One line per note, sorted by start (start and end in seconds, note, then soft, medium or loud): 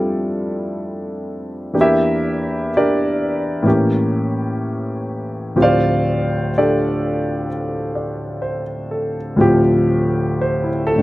0.00 1.72 F2 soft
0.00 1.73 F3 soft
0.00 1.74 G3 soft
0.00 1.74 A3 soft
0.00 1.75 C4 soft
0.00 1.74 D4 soft
0.00 1.75 F4 soft
0.00 1.73 G4 soft
0.00 1.76 A4 soft
0.00 1.77 D5 medium
1.73 3.66 E2 soft
1.73 3.62 E3 soft
1.73 3.64 A#3 soft
1.73 2.76 D4 soft
1.73 1.80 G4 soft
1.81 2.70 E4 medium
1.81 2.70 G4 medium
1.81 2.70 A#4 medium
1.81 2.70 E5 medium
2.77 3.66 D4 medium
2.77 3.65 G4 medium
2.77 3.66 A#4 medium
2.77 3.65 D5 medium
3.62 5.54 A2 medium
3.62 5.55 E3 soft
3.62 5.56 A#3 soft
3.62 5.56 C#4 medium
3.67 5.55 G4 medium
5.56 9.35 D2 soft
5.56 9.36 A2 soft
5.56 9.37 F3 soft
5.56 9.38 C4 soft
5.56 5.62 F4 soft
5.56 6.57 G4 medium
5.62 6.51 F4 medium
5.62 6.50 C5 medium
5.62 6.51 D5 medium
5.62 6.50 F5 medium
6.58 7.46 D4 soft
6.58 7.46 G4 medium
6.58 7.47 A4 medium
6.58 7.46 D5 medium
7.95 8.63 D5 soft
8.42 9.17 C5 soft
8.91 9.58 A4 soft
9.36 11.02 D2 medium
9.36 10.94 A2 medium
9.36 11.02 F3 soft
9.36 11.02 C4 medium
9.40 11.02 F4 soft
9.40 11.02 G4 medium
10.41 10.68 C5 medium
10.64 10.95 E4 soft
10.87 11.02 A4 medium
10.95 11.02 A2 soft
10.95 11.02 D3 soft
10.95 11.02 A3 soft
10.95 11.02 D4 soft